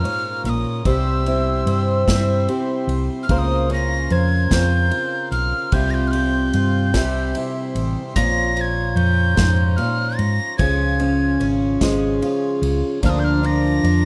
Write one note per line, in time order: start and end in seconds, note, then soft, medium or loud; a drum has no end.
0.00 0.45 G#2 medium
0.00 0.44 A#2 medium
0.00 0.80 C#4 medium
0.00 0.83 F4 medium
0.00 0.86 F4 medium
0.00 0.94 F4 medium
0.00 0.84 A#4 medium
0.00 0.86 A#4 medium
0.00 0.83 C#5 medium
0.00 0.84 A#5 medium
0.00 0.45 F6 medium
0.04 0.94 C#4 medium
0.04 ride soft
0.44 0.64 A#1 medium
0.44 0.85 A#2 medium
0.44 0.51 F6 medium
0.44 ride medium
0.50 0.87 D#6 medium
0.84 1.63 C2 loud
0.84 3.25 C3 medium
0.84 3.29 G3 medium
0.84 3.27 G4 medium
0.84 2.47 G4 medium
0.84 3.27 C5 medium
0.84 1.67 C5 medium
0.84 3.27 E5 medium
0.84 3.26 C6 medium
0.84 2.48 E6 medium
0.84 kick medium
0.84 ride medium
1.26 2.08 C4 medium
1.26 3.25 E4 medium
1.26 ride soft
1.66 2.05 G2 medium
1.66 2.09 C5 medium
1.66 ride soft
2.08 2.47 G2 medium
2.08 2.49 C4 medium
2.08 3.33 C4 medium
2.08 3.38 E4 medium
2.08 3.31 C5 medium
2.08 kick medium
2.08 snare medium
2.08 ride medium
2.48 3.70 C4 medium
2.48 3.25 G4 medium
2.48 ride soft
2.87 3.07 C2 medium
2.87 ride soft
3.23 5.69 A#4 medium
3.23 3.34 F6 medium
3.28 4.07 C#2 medium
3.28 5.68 C#3 medium
3.28 5.72 A#3 medium
3.28 4.90 F4 medium
3.28 4.11 C5 medium
3.28 6.90 F5 medium
3.28 6.90 C6 medium
3.28 kick medium
3.28 ride medium
3.34 3.39 F6 medium
3.38 3.73 D#6 medium
3.70 5.68 C#4 medium
3.70 4.51 C#4 medium
3.70 4.14 A#6 medium
3.70 ride soft
4.10 4.49 F2 medium
4.10 4.53 C5 medium
4.10 4.54 G#6 medium
4.10 ride soft
4.51 4.90 F2 medium
4.51 8.01 C4 medium
4.51 4.92 C#4 medium
4.51 5.73 F4 medium
4.51 8.03 C5 medium
4.51 5.31 G6 medium
4.51 kick medium
4.51 snare loud
4.51 ride medium
4.91 5.73 F4 medium
4.91 ride soft
5.31 5.51 B1 medium
5.31 5.75 F6 medium
5.31 ride soft
5.72 6.50 C2 loud
5.72 6.90 C3 medium
5.72 6.14 G3 medium
5.72 6.54 F4 medium
5.72 6.13 F4 medium
5.72 6.94 G4 medium
5.72 10.56 C5 medium
5.72 5.92 G6 medium
5.72 kick medium
5.72 ride medium
5.91 6.09 G6 medium
5.91 5.95 A#6 medium
6.08 6.12 F6 medium
6.08 7.36 G6 medium
6.13 6.93 G3 medium
6.13 6.95 F4 medium
6.13 ride soft
6.53 6.93 G2 medium
6.53 7.03 F4 medium
6.53 ride medium
6.94 7.33 C2 medium
6.94 8.12 C3 medium
6.94 7.33 G3 medium
6.94 8.16 G4 medium
6.94 8.12 G4 medium
6.94 8.15 E5 medium
6.94 8.15 C6 medium
6.94 kick medium
6.94 snare medium
6.94 ride medium
7.35 8.16 G3 medium
7.35 8.12 E4 medium
7.35 ride medium
7.75 7.95 A1 medium
7.75 ride medium
8.16 8.93 A#1 medium
8.16 9.77 A#2 medium
8.16 8.56 F3 medium
8.16 8.96 C#4 medium
8.16 14.05 F4 medium
8.16 10.60 F4 medium
8.16 12.99 C#5 medium
8.16 10.57 A#5 medium
8.16 8.57 A#6 loud
8.16 kick medium
8.16 ride medium
8.56 9.36 F3 medium
8.56 8.62 A#6 medium
8.56 ride soft
8.61 8.98 G#6 medium
8.96 9.35 F2 medium
8.96 9.37 C#4 medium
8.96 9.78 G6 medium
8.96 ride soft
9.37 9.76 F2 medium
9.37 9.79 G#2 medium
9.37 9.78 F3 medium
9.37 10.57 C#4 medium
9.37 kick medium
9.37 snare medium
9.37 ride medium
9.77 10.19 A#2 medium
9.77 10.58 F3 medium
9.77 10.19 F6 medium
9.77 ride soft
10.17 10.38 G#2 medium
10.17 10.57 A#6 loud
10.17 ride medium
10.58 11.37 C#2 medium
10.58 12.98 C#3 medium
10.58 10.99 F3 medium
10.58 11.39 C#4 medium
10.58 12.22 F4 medium
10.58 13.00 G#4 medium
10.58 13.00 G#5 medium
10.58 11.46 G#6 medium
10.58 kick medium
10.58 ride medium
10.99 11.81 F3 medium
10.99 12.98 C#4 medium
10.99 ride soft
11.40 11.79 G#1 medium
11.40 11.81 C#4 medium
11.40 ride soft
11.81 12.20 G#1 medium
11.81 12.22 F3 medium
11.81 13.03 G#3 medium
11.81 13.12 G#3 medium
11.81 13.03 C#4 medium
11.81 kick medium
11.81 snare medium
11.81 ride medium
12.22 13.03 F3 medium
12.22 13.05 F4 medium
12.22 ride soft
12.62 12.81 C#2 medium
12.62 ride medium
13.02 13.80 D2 loud
13.02 14.05 D3 medium
13.02 13.42 F3 medium
13.02 14.05 F3 medium
13.02 14.05 A#3 medium
13.02 13.83 D4 medium
13.02 13.42 D4 medium
13.02 14.05 F4 medium
13.02 14.05 A#4 medium
13.02 14.05 D5 medium
13.02 14.05 A#5 medium
13.02 13.11 F6 medium
13.02 kick medium
13.02 ride medium
13.10 13.21 D#6 medium
13.19 13.25 G6 medium
13.24 13.47 F6 loud
13.43 14.05 F3 medium
13.43 14.05 D4 medium
13.43 14.05 A#6 loud
13.43 ride soft
13.83 14.05 F2 medium
13.83 14.05 D4 medium
13.83 ride soft